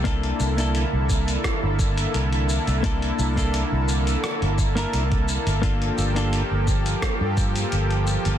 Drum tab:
HH |xx-xx--xx--xxx-x|xx-xx--xxx-xxx-x|xx-xx--xx--xxx-x|
SH |x-xxx-xxx-xxx-xx|x-xxx-xxx-xxx-xx|x-xxx-xxx-xxx-xx|
SD |--------r-------|--------r-------|--------r-------|
BD |o-----o-o-o-----|o--o------o--o--|o-----o-o-o-----|